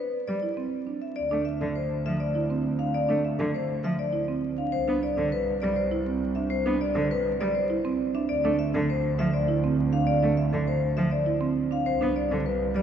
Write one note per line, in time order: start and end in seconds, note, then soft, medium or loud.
0.00 0.17 B4 soft
0.27 0.39 G3 medium
0.27 0.47 D5 medium
0.43 0.62 E4 soft
0.57 0.77 C4 soft
0.87 1.06 D4 soft
1.02 1.21 E5 soft
1.16 4.58 D2 medium
1.16 1.36 D5 medium
1.31 1.43 A3 medium
1.31 1.51 D4 medium
1.45 1.65 E5 medium
1.61 1.72 D3 medium
1.76 1.95 C5 soft
2.06 2.17 F3 medium
2.06 2.25 E5 medium
2.20 2.40 D5 medium
2.35 2.55 E4 medium
2.50 2.70 C4 medium
2.79 2.99 D4 medium
2.79 2.99 F5 medium
2.94 3.14 D5 medium
3.09 3.21 A3 medium
3.09 3.29 D4 medium
3.25 3.44 E5 medium
3.39 3.51 D3 medium
3.54 3.74 C5 medium
3.84 3.95 F3 medium
3.84 4.03 E5 medium
3.99 4.18 D5 medium
4.13 4.33 E4 medium
4.28 4.48 C4 medium
4.58 4.78 D4 soft
4.58 4.77 F5 medium
4.72 8.13 C2 medium
4.72 4.92 C5 medium
4.88 4.99 B3 medium
4.88 5.07 D4 medium
5.03 5.22 D5 medium
5.18 5.29 D3 medium
5.32 5.52 B4 medium
5.62 5.74 G3 medium
5.62 5.81 D5 medium
5.76 5.96 C5 medium
5.91 6.11 E4 medium
6.06 6.26 C4 medium
6.35 6.56 D4 medium
6.35 6.55 E5 medium
6.50 6.70 C5 medium
6.66 6.77 B3 medium
6.66 6.85 D4 medium
6.81 7.00 D5 medium
6.95 7.07 D3 medium
7.11 7.30 B4 medium
7.41 7.52 G3 medium
7.41 7.60 D5 medium
7.55 7.74 C5 medium
7.70 7.89 E4 medium
7.85 8.04 C4 medium
8.15 8.34 D4 medium
8.15 8.34 E5 medium
8.29 11.70 D2 medium
8.29 8.49 D5 medium
8.44 8.55 A3 medium
8.44 8.64 D4 medium
8.59 8.78 E5 medium
8.74 8.85 D3 medium
8.90 9.09 C5 medium
9.19 9.30 F3 medium
9.19 9.38 E5 medium
9.34 9.53 D5 medium
9.48 9.68 E4 medium
9.64 9.83 C4 medium
9.93 10.12 D4 medium
9.93 10.12 F5 medium
10.07 10.27 D5 medium
10.23 10.34 A3 medium
10.23 10.42 D4 medium
10.37 10.57 E5 medium
10.53 10.64 D3 medium
10.68 10.87 C5 medium
10.97 11.08 F3 medium
10.97 11.16 E5 medium
11.12 11.31 D5 medium
11.26 11.46 E4 medium
11.41 11.60 C4 medium
11.71 11.90 D4 medium
11.71 11.91 F5 medium
11.86 12.82 C2 medium
11.86 12.05 C5 medium
12.01 12.12 B3 medium
12.01 12.20 D4 medium
12.16 12.35 D5 medium
12.31 12.42 D3 medium
12.46 12.65 B4 medium
12.75 12.82 G3 medium
12.75 12.82 D5 medium